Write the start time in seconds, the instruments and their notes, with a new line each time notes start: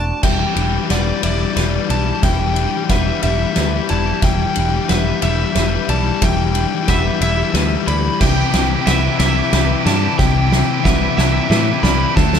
Already playing: picked electric bass E1, ambient pad E3 C4 F#4, clean electric guitar A3 D4 F#4, felt piano D5, electric slide guitar A5
0.23 picked electric bass E1, clean electric guitar E3, ambient pad E3 D4 G4, overdriven electric guitar E3 G3, felt piano E5, electric slide guitar G5, kick, snare, crash
0.31 overdriven electric guitar E3 G3
0.38 overdriven electric guitar E3 G3
0.46 overdriven electric guitar E3 G3
0.54 picked electric bass E1, overdriven electric guitar E3 G3, clean electric guitar D4, ride
0.62 overdriven electric guitar E3 G3
0.69 overdriven electric guitar E3 G3
0.77 overdriven electric guitar E3 G3
0.83 overdriven electric guitar E3 G3
0.89 picked electric bass E1, overdriven electric guitar E3 G3, clean electric guitar B4, electric slide guitar D5, felt piano F#5, snare, ride
1.00 overdriven electric guitar E3 G3
1.07 overdriven electric guitar E3 G3
1.14 overdriven electric guitar E3 G3
1.22 picked electric bass E1, overdriven electric guitar E3 G3, clean electric guitar E4, electric slide guitar D5, felt piano E5, ride
1.30 overdriven electric guitar E3 G3
1.37 overdriven electric guitar E3 G3
1.46 overdriven electric guitar E3 G3
1.53 picked electric bass E1, overdriven electric guitar E3 G3, clean electric guitar B4, snare, ride
1.60 overdriven electric guitar E3 G3
1.68 overdriven electric guitar E3 G3
1.76 overdriven electric guitar E3 G3
1.84 overdriven electric guitar E3 G3
1.89 picked electric bass B1, overdriven electric guitar E3 G3, clean electric guitar E4, felt piano D5, electric slide guitar A5, ride
1.98 overdriven electric guitar E3 G3
2.06 overdriven electric guitar E3 G3
2.14 overdriven electric guitar E3 G3
2.22 picked electric bass E1, clean electric guitar E3, overdriven electric guitar E3 G3, felt piano E5, electric slide guitar G5, kick, snare, ride
2.31 overdriven electric guitar E3 G3
2.38 overdriven electric guitar E3 G3
2.46 overdriven electric guitar E3 G3
2.53 overdriven electric guitar E3 G3, clean electric guitar D4, ride
2.61 overdriven electric guitar E3 G3
2.68 overdriven electric guitar E3 G3
2.76 overdriven electric guitar E3 G3
2.84 overdriven electric guitar E3 G3
2.89 picked electric bass E1, overdriven electric guitar E3 G3, clean electric guitar B4, electric slide guitar E5, felt piano F#5, kick, snare, ride
2.98 overdriven electric guitar E3 G3
3.07 overdriven electric guitar E3 G3
3.14 overdriven electric guitar E3 G3
3.22 picked electric bass E1, overdriven electric guitar E3 G3, clean electric guitar E4, felt piano E5, electric slide guitar E5, ride
3.29 overdriven electric guitar E3 G3
3.38 overdriven electric guitar E3 G3
3.44 overdriven electric guitar E3 G3
3.52 overdriven electric guitar E3 G3, clean electric guitar B4, snare, ride
3.57 picked electric bass D2, overdriven electric guitar E3 G3
3.68 overdriven electric guitar E3 G3
3.75 overdriven electric guitar E3 G3
3.83 overdriven electric guitar E3 G3
3.89 picked electric bass E1, overdriven electric guitar E3 G3, clean electric guitar E4, felt piano D5, electric slide guitar A5, ride
3.99 overdriven electric guitar E3 G3
4.06 overdriven electric guitar E3 G3
4.13 overdriven electric guitar E3 G3
4.22 picked electric bass E1, clean electric guitar E3, overdriven electric guitar E3 G3, ambient pad E4, felt piano E5, electric slide guitar G5, kick, snare, ride
4.30 overdriven electric guitar E3 G3
4.38 overdriven electric guitar E3 G3
4.45 overdriven electric guitar E3 G3
4.53 overdriven electric guitar E3 G3, clean electric guitar D4, ride
4.57 picked electric bass E1, overdriven electric guitar E3
4.62 overdriven electric guitar G3
4.69 overdriven electric guitar E3 G3
4.76 overdriven electric guitar E3 G3
4.84 overdriven electric guitar E3 G3
4.88 picked electric bass E1, overdriven electric guitar E3 G3, clean electric guitar B4, electric slide guitar E5, felt piano F#5, snare, ride
4.98 overdriven electric guitar E3 G3
5.07 overdriven electric guitar E3 G3
5.13 overdriven electric guitar E3 G3
5.21 picked electric bass E1, overdriven electric guitar E3 G3, clean electric guitar E4, felt piano E5, electric slide guitar E5, ride
5.29 overdriven electric guitar E3 G3
5.36 overdriven electric guitar E3 G3
5.44 overdriven electric guitar E3 G3
5.52 picked electric bass E1, overdriven electric guitar E3 G3, clean electric guitar B4, snare, ride
5.60 overdriven electric guitar E3 G3
5.68 overdriven electric guitar E3 G3
5.74 overdriven electric guitar E3 G3
5.82 overdriven electric guitar E3 G3
5.88 picked electric bass B1, overdriven electric guitar E3 G3, clean electric guitar E4, felt piano D5, electric slide guitar A5, ride
5.98 overdriven electric guitar E3 G3
6.05 overdriven electric guitar E3 G3
6.13 overdriven electric guitar E3 G3
6.21 picked electric bass E1, clean electric guitar E3, overdriven electric guitar E3 G3, felt piano E5, electric slide guitar G5, kick, snare, ride
6.30 overdriven electric guitar E3 G3
6.37 overdriven electric guitar E3 G3
6.45 overdriven electric guitar E3 G3
6.52 overdriven electric guitar E3 G3, clean electric guitar D4, ride
6.60 overdriven electric guitar E3 G3
6.68 overdriven electric guitar E3 G3
6.75 overdriven electric guitar E3 G3
6.82 overdriven electric guitar E3 G3
6.88 picked electric bass E1, overdriven electric guitar E3 G3, clean electric guitar B4, electric slide guitar E5, felt piano F#5, kick, snare, ride
6.98 overdriven electric guitar E3 G3
7.06 overdriven electric guitar E3 G3
7.13 overdriven electric guitar E3 G3
7.21 picked electric bass E1, overdriven electric guitar E3 G3, clean electric guitar E4, felt piano E5, electric slide guitar E5, ride
7.28 overdriven electric guitar E3 G3
7.36 overdriven electric guitar E3 G3
7.44 overdriven electric guitar E3 G3
7.52 picked electric bass D2, overdriven electric guitar E3 G3, clean electric guitar B4, snare, ride
7.59 overdriven electric guitar E3 G3
7.67 overdriven electric guitar E3 G3
7.75 overdriven electric guitar E3 G3
7.81 overdriven electric guitar E3 G3
7.87 picked electric bass D2, overdriven electric guitar E3 G3, clean electric guitar E4, felt piano D5, electric slide guitar B5, ride
7.97 overdriven electric guitar E3 G3
8.05 overdriven electric guitar E3 G3
8.12 overdriven electric guitar E3 G3
8.20 picked electric bass C2, clean electric guitar C3, overdriven electric guitar C3 E3 E4 G4, ambient pad C3 E4, felt piano E5, electric slide guitar G5, kick, snare, crash
8.29 overdriven electric guitar C3 E3 E4 G4
8.36 overdriven electric guitar C3 E3 E4 G4
8.44 overdriven electric guitar C3 E3 E4 G4
8.50 picked electric bass C2, overdriven electric guitar C3 E3 E4 G4, snare, ride
8.54 overdriven electric guitar E3 E4, clean electric guitar C4
8.59 overdriven electric guitar C3 G4
8.66 overdriven electric guitar C3 E3 E4 G4
8.73 overdriven electric guitar C3 E3 E4 G4
8.81 overdriven electric guitar C3 E3 E4 G4
8.87 picked electric bass C2, overdriven electric guitar C3 E3 E4, clean electric guitar B4, electric slide guitar E5, felt piano F#5, snare, ride
8.93 overdriven electric guitar C3 E3 G4
8.98 overdriven electric guitar E4 G4
9.04 overdriven electric guitar C3 E3 E4
9.08 overdriven electric guitar C3 E4 G4
9.13 overdriven electric guitar E3 G4
9.19 picked electric bass C2, overdriven electric guitar C3 E3 E4, clean electric guitar E4, electric slide guitar E5, felt piano E5, snare, ride
9.23 overdriven electric guitar C3 E4 G4
9.28 overdriven electric guitar E3 G4
9.32 overdriven electric guitar C3 E3 E4
9.38 overdriven electric guitar C3 E4 G4
9.44 overdriven electric guitar E3 G4
9.49 picked electric bass C2, overdriven electric guitar C3 E3 E4, snare, ride
9.54 overdriven electric guitar C3 E3 E4 G4, clean electric guitar B4
9.63 overdriven electric guitar C3 E3 E4 G4
9.71 overdriven electric guitar C3 E3 E4 G4
9.77 overdriven electric guitar C3 E3 E4 G4
9.86 picked electric bass G2, overdriven electric guitar C3 E3 E4 G4, clean electric guitar E4, felt piano D5, electric slide guitar A5, snare, ride
9.94 overdriven electric guitar C3 E3 E4 G4
10.01 overdriven electric guitar C3 E3 E4 G4
10.08 overdriven electric guitar C3 E3 E4 G4
10.18 picked electric bass C2, overdriven electric guitar C3 E3 E4 G4, clean electric guitar C3, felt piano E5, electric slide guitar G5, kick, snare
10.26 overdriven electric guitar C3 E3 E4 G4
10.34 overdriven electric guitar C3 E3 E4 G4
10.41 overdriven electric guitar C3 E3 E4 G4
10.49 overdriven electric guitar C3 E3 E4 G4, clean electric guitar C4, snare
10.57 overdriven electric guitar C3 E3 E4 G4
10.64 overdriven electric guitar C3 E3 E4 G4
10.72 overdriven electric guitar C3 E3 E4 G4
10.79 overdriven electric guitar C3 E3 E4 G4
10.84 picked electric bass C2, overdriven electric guitar C3 E4 G4, clean electric guitar B4, electric slide guitar E5, felt piano F#5, kick, snare
10.88 overdriven electric guitar E3
10.95 overdriven electric guitar C3 E3 E4 G4
11.01 overdriven electric guitar C3 E3 E4 G4
11.10 overdriven electric guitar C3 E3 E4 G4
11.16 picked electric bass C2, overdriven electric guitar C3 E3 E4 G4, clean electric guitar E4, electric slide guitar E5, felt piano E5, snare
11.24 overdriven electric guitar C3 E3 E4 G4
11.33 overdriven electric guitar C3 E3 E4 G4
11.40 overdriven electric guitar C3 E3 E4 G4
11.48 picked electric bass A2, overdriven electric guitar C3 E3 E4 G4, clean electric guitar B4, snare
11.56 overdriven electric guitar C3 E3 E4 G4
11.62 overdriven electric guitar C3 E3 E4 G4
11.70 overdriven electric guitar C3 E3 E4 G4
11.79 overdriven electric guitar C3 E3 E4 G4
11.83 picked electric bass C2, overdriven electric guitar C3 E3 E4 G4, clean electric guitar E4, felt piano D5, electric slide guitar B5, snare
11.94 overdriven electric guitar C3 E3 E4 G4
12.02 overdriven electric guitar C3 E3 E4 G4
12.09 overdriven electric guitar C3 E3 E4 G4
12.16 picked electric bass D2, overdriven electric guitar D3 A3 D4 A4, clean electric guitar D3, felt piano E5, electric slide guitar A5, kick, snare
12.24 overdriven electric guitar D3 A3 D4 A4
12.31 overdriven electric guitar D3 A3 D4 A4, snare